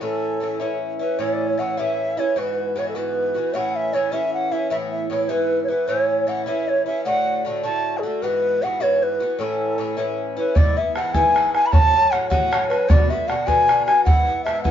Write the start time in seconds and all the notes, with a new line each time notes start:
0.01 A2 E3 C#4 E4 A4
0.40 A2 E3 C#4 E4
0.60 A2 E3 C#4 E4
0.99 E3 C#4 E4 B4
1.19 A2 E3 C#4 E4 C#5
1.33 D5
1.47 C#5
1.58 A2 E3 C#4 E4 F#5
1.77 A2 E3 C#4 E4 E5
2.17 E3 C#4 E4 C#5
2.36 G#2 E3 B3 F#4 B4
2.76 G#2 E3 B3 F#4 C#5
2.89 A4
2.95 G#2 E3 B3 F#4 B4
3.35 E3 B3 F#4
3.54 A2 E3 C#4 E4 F#5
3.76 E5
3.93 A2 E3 C#4 E4 C#5
4.12 A2 E3 C#4 E4 E5
4.34 F#5
4.52 E3 C#4 E4 E5
4.70 A2 E3 B3 E4 E5
4.91 E5
5.10 A2 E3 B3 E4 C#5
5.29 G#2 E3 B3 E4 B4
5.64 C#5
5.68 E3 B3 E4 B4
5.87 A2 E3 C#4 E4 C#5
6.27 A2 E3 C#4 E4 F#5
6.46 A2 E3 C#4 E4 E5
6.68 C#5
6.86 E3 C#4 E4 E5
7.05 A2 D3 A3 F#4 F#5
7.45 A2 D3 A3 F#4
7.63 A2 D3 A3 F#4 A5
7.98 G#4
8.03 D3 A3 F#4 A4
8.22 G#2 E3 B3 F#4 B4
8.62 G#2 E3 B3 F#4 F#5
8.80 G#2 E3 B3 F#4 C#5
9.03 B4
9.20 E3 B3 F#4
9.39 A2 E3 C#4 E4 A4
9.78 A2 E3 C#4 E4
9.97 A2 E3 C#4 E4
10.37 E3 C#4 E4 B4
10.55 G#2 E3 B3 E4 D5, bodhran
10.77 E3 B3 E4 E5
10.95 G#2 E3 B3 E4 F#5, bodhran
11.14 G#2 E3 B3 E4 G#5, bodhran
11.34 G#2 E3 B3 E4, bodhran
11.54 E3 B3 E4 G#5, bodhran
11.66 B5
11.72 A2 F#3 C#4 F#4 A5, bodhran
11.93 F#3 C#4 F#4
12.11 A2 F#3 C#4 F#4 F#5, bodhran
12.30 A2 F#3 C#4 F#4 F#5, bodhran
12.52 A2 F#3 C#4 F#4, bodhran
12.69 F#3 C#4 F#4 B4, bodhran
12.89 B2 D3 B3 F#4 D5, bodhran
13.10 D3 B3 F#4 E5
13.28 B2 D3 B3 F#4 F#5, bodhran
13.47 B2 D3 B3 F#4 G#5, bodhran
13.68 B2 D3 B3 F#4, bodhran
13.86 B3 F#4 G#5, bodhran
13.91 D3
14.04 G#2 E3 B3 E4 F#5, bodhran
14.27 E3 B3 E4
14.44 G#2 E3 B3 E5, bodhran
14.49 E4
14.63 G#2 E3 B3 E4 F#5, bodhran